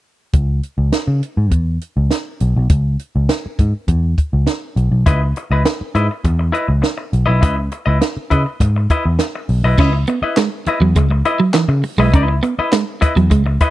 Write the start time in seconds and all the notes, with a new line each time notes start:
0.33 C#2, kick, closed hi-hat
0.63 closed hi-hat
0.78 C#2
0.92 snare, closed hi-hat
1.07 C#3
1.23 closed hi-hat
1.37 G#2
1.51 E2, kick, closed hi-hat
1.81 closed hi-hat
1.97 C#2
2.11 snare, closed hi-hat
2.40 B1, closed hi-hat
2.56 B1
2.69 C#2, kick, closed hi-hat
2.99 closed hi-hat
3.16 C#2
3.29 snare, closed hi-hat
3.46 muted picked electric bass stroke
3.59 G#2, kick, closed hi-hat
3.88 E2, kick, closed hi-hat
4.18 kick, closed hi-hat
4.33 C#2
4.47 snare, closed hi-hat
4.76 B1, closed hi-hat
4.91 B1
5.06 C#2 E4 B4 D#5, kick, closed hi-hat
5.22 muted clean electric guitar stroke
5.36 muted clean electric guitar stroke, closed hi-hat
5.51 C#2 E4 B4 D#5
5.65 muted clean electric guitar stroke, snare, closed hi-hat
5.81 muted picked electric bass stroke
5.95 G#2 E4 B4 D#5, closed hi-hat
6.11 muted clean electric guitar stroke
6.24 E2, muted clean electric guitar stroke, kick, closed hi-hat
6.39 muted clean electric guitar stroke
6.52 E4 B4 D#5, closed hi-hat
6.68 C#2, muted clean electric guitar stroke
6.82 muted clean electric guitar stroke, snare, closed hi-hat
6.98 muted clean electric guitar stroke
7.13 B1, closed hi-hat
7.26 B1 E4 B4 D#5
7.41 C#2 E4 B4 D#5, kick, closed hi-hat
7.56 muted clean electric guitar stroke
7.72 muted clean electric guitar stroke, closed hi-hat
7.86 C#2 E4 B4 D#5
8.01 snare, closed hi-hat
8.17 muted picked electric bass stroke
8.30 C#3 E4 B4 D#5, kick, closed hi-hat
8.47 muted clean electric guitar stroke
8.60 G#2, muted clean electric guitar stroke, kick, closed hi-hat
8.76 muted clean electric guitar stroke
8.90 E4 B4 D#5, kick, closed hi-hat
9.05 E2, muted clean electric guitar stroke
9.19 muted clean electric guitar stroke, snare, closed hi-hat
9.35 muted clean electric guitar stroke
9.49 B1, open hi-hat
9.64 B1 E4 B4 D#5
9.78 C#2 C#4 E4 B4 D#5, kick, crash
9.94 muted clean electric guitar stroke
10.07 B3, muted clean electric guitar stroke, closed hi-hat
10.22 E4 B4 D#5, muted picked electric bass stroke
10.37 G#3, muted clean electric guitar stroke, snare, clap, closed hi-hat
10.66 E4 B4 D#5, muted picked electric bass stroke, muted clean electric guitar stroke, closed hi-hat
10.81 E2 F#3
10.95 C#2 G#3, muted clean electric guitar stroke, kick, closed hi-hat
11.11 muted clean electric guitar stroke
11.25 E4 B4 D#5, closed hi-hat
11.40 F#3, muted clean electric guitar stroke
11.54 E3, muted clean electric guitar stroke, snare, clap, closed hi-hat
11.69 C#3, muted clean electric guitar stroke
11.83 muted clean electric guitar stroke, open hi-hat
11.98 B1 G#3 E4 B4 D#5
12.13 C#2 C#4 E4 B4 D#5, kick, closed hi-hat
12.29 muted clean electric guitar stroke
12.43 B3, muted clean electric guitar stroke, closed hi-hat
12.59 E4 B4 D#5, muted picked electric bass stroke
12.72 G#3, muted clean electric guitar stroke, snare, clap, closed hi-hat
13.01 E4 B4 D#5, muted clean electric guitar stroke, muted picked electric bass stroke, kick, closed hi-hat
13.16 E2 F#3, muted clean electric guitar stroke, closed hi-hat
13.30 C#2 G#3, muted clean electric guitar stroke, kick, closed hi-hat
13.46 muted clean electric guitar stroke
13.60 E4 B4 D#5, kick, closed hi-hat